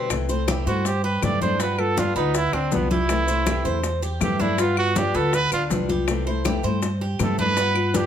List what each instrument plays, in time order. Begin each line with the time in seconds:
Already playing: steel-string acoustic guitar B3 G4
0.09 upright bass C2, steel-string acoustic guitar C3 E3 A3 C4 E4, high bongo, high conga, claves, maracas
0.29 steel-string acoustic guitar A3 C4 E4, cuban tres C5, high bongo, high conga, maracas
0.47 steel-string acoustic guitar C3 E3 A3 C4 E4, cuban tres G4, high bongo, high conga, claves, maracas
0.66 upright bass G2, steel-string acoustic guitar A3 C4 E4, trumpet F#4, cuban tres C5, high bongo, high conga, maracas
0.85 trumpet G4, muted steel-string acoustic guitar stroke, high bongo, high conga, maracas
1.04 cuban tres G4, trumpet B4, high bongo, high conga
1.22 upright bass G2, steel-string acoustic guitar C3 E3 A3 C4 E4, trumpet D5, high bongo, low bongo, high conga, claves, maracas
1.40 steel-string acoustic guitar A3 C4 E4, cuban tres D4, trumpet C5, high conga, maracas
1.59 steel-string acoustic guitar G3 B3 F4, cuban tres B3, trumpet B4, high bongo, high conga, maracas
1.77 steel-string acoustic guitar B3 F4, trumpet A4, high bongo, high conga, claves
1.96 steel-string acoustic guitar G3 B3 F4, cuban tres D4, trumpet F4, high bongo, high conga, maracas
2.15 upright bass D2, cuban tres B3, steel-string acoustic guitar B3 F4, trumpet D#4, high bongo, high conga, maracas
2.34 trumpet E4, muted steel-string acoustic guitar stroke, high bongo, high conga, maracas
2.52 upright bass D2, trumpet C4, cuban tres D4, high bongo, high conga, claves
2.71 upright bass C2, steel-string acoustic guitar G3 B3 F4, trumpet B3, high bongo, low bongo, high conga, maracas
2.90 steel-string acoustic guitar B3 F4, trumpet E4, cuban tres G4, high conga, maracas
3.08 steel-string acoustic guitar C3 E3 A3 C4 E4, high bongo, high conga, claves, maracas
3.27 steel-string acoustic guitar A3 C4 E4, cuban tres C5, high bongo, high conga, maracas
3.45 steel-string acoustic guitar C3 E3 A3 C4 E4, cuban tres G4, high bongo, high conga, claves, maracas
3.64 upright bass E2, steel-string acoustic guitar A3 C4 E4, cuban tres C5, high bongo, high conga, maracas
3.83 muted steel-string acoustic guitar stroke, high bongo, high conga, maracas
4.02 cuban tres G4, high bongo, high conga, maracas
4.20 upright bass G2, steel-string acoustic guitar C3 E3 A3 C4 E4, trumpet G4, high bongo, low bongo, high conga, claves, maracas
4.39 steel-string acoustic guitar A3 C4 E4, cuban tres D4, trumpet E4, high conga, maracas
4.58 steel-string acoustic guitar G3 B3 F4, cuban tres B3, trumpet F4, high bongo, high conga, maracas
4.77 steel-string acoustic guitar B3 F4, trumpet F#4, high bongo, high conga, claves
4.96 steel-string acoustic guitar G3 B3 F4, cuban tres D4, trumpet G4, high bongo, high conga, maracas
5.14 upright bass D2, cuban tres B3, steel-string acoustic guitar B3 F4, trumpet A4, high bongo, high conga, maracas
5.33 trumpet B4, muted steel-string acoustic guitar stroke, high bongo, high conga, maracas
5.51 upright bass D2, cuban tres D4, trumpet F4, high bongo, high conga, claves, maracas
5.70 upright bass C2, steel-string acoustic guitar G3 B3 F4, high bongo, low bongo, high conga, maracas
5.88 steel-string acoustic guitar B3 F4, cuban tres G4, high conga, maracas
6.07 steel-string acoustic guitar C3 E3 A3 C4 E4, high bongo, high conga, claves, maracas
6.26 steel-string acoustic guitar A3 C4 E4, cuban tres C5, high bongo, high conga
6.45 steel-string acoustic guitar C3 E3 A3 C4 E4, cuban tres G4, high bongo, high conga, claves, maracas
6.63 upright bass G2, steel-string acoustic guitar A3 C4 E4, cuban tres C5, high bongo, high conga, maracas
6.82 muted steel-string acoustic guitar stroke, high bongo, high conga, maracas
7.01 cuban tres G4, high bongo, high conga
7.19 upright bass G2, steel-string acoustic guitar C3 E3 A3 C4 E4, trumpet A4, high bongo, low bongo, high conga, claves, maracas
7.38 steel-string acoustic guitar A3 C4 E4, cuban tres D4, trumpet B4, high conga, maracas
7.56 steel-string acoustic guitar G3 B3 F4, cuban tres B3, high bongo, high conga, maracas
7.74 steel-string acoustic guitar B3 F4, high bongo, high conga, claves
7.93 steel-string acoustic guitar G3 B3 F4, cuban tres D4, trumpet G4, high bongo, high conga, maracas